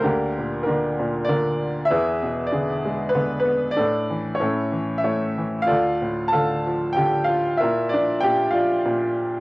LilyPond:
<<
  \new Staff \with { instrumentName = "Upright piano" } { \time 3/4 \key d \minor \tempo 4 = 96 <bes d' g' bes'>4 <bes d' bes'>4 <d' bes' d''>8. r16 | <e' gis' b' e''>4 <d' gis' d''>4 <b b'>8 <b b'>8 | <d' a' d''>4 <cis' e' a' cis''>4 <e' cis'' e''>8. r16 | <f' a' d'' f''>4 <a' f'' a''>4 <g' g''>8 <f' f''>8 |
<e' bes' e''>8 <d' d''>8 <g' g''>8 <f' d'' f''>4 r8 | }
  \new Staff \with { instrumentName = "Upright piano" } { \clef bass \time 3/4 \key d \minor d,8 bes,8 d8 bes,8 d4 | e,8 b,8 d8 gis8 d4 | a,8 e8 a,8 e8 a8 e8 | d,8 a,8 d8 f8 d4 |
bes,8 f8 bes,8 f8 bes,4 | }
>>